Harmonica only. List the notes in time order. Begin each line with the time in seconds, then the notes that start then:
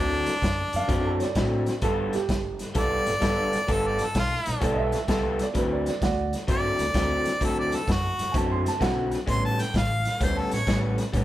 Already playing: D4
2.79 D5
3.72 A4
3.87 D5
4.04 A4
4.19 F4
6.51 D5
7.44 A4
7.59 D5
7.75 A4
7.91 F#4
9.31 C6
9.45 A5
9.62 G5
9.77 F5
10.23 C5
10.39 A4
10.54 C#5